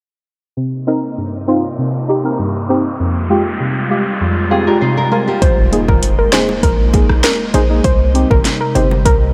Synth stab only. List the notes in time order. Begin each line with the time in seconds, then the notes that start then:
0.57 C3
0.87 C4 D#4 A#4
1.18 G2
1.48 C4 D#4 F4
1.78 C3
2.08 D#4 G4
2.24 C4 D#4 A#4
2.39 G2
2.69 C4 D#4 G4
3.00 F2
3.29 G#3 F4 G4
3.60 C3
3.90 G#3 F4 G4
4.21 F2
4.51 F4 G4
4.67 G#3 F4 G4
4.81 C3
5.11 G#3 F4 A#4
5.72 A#3 D#4 G#4
6.33 A#3 D#4 G#4
6.93 A#3 D#4 G#4
7.54 D#4 G#4
7.70 A#3 D#4 G#4
8.14 C4 D#4 G4
8.75 C4 D#4 G4